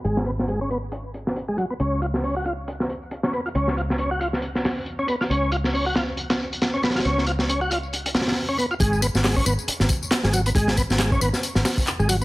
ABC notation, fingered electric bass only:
X:1
M:4/4
L:1/16
Q:"Swing 16ths" 1/4=137
K:G#dor
V:1 name="Fingered electric bass" clef=bass
G,,,16 | C,,16 | C,,16 | C,,16 |
C,,16 | G,,,2 z G,,,2 z G,,, z2 G,,, z3 G,,,2 z | G,,,2 z G,,,2 z G,,, z2 G,,, z3 G,,,2 z |]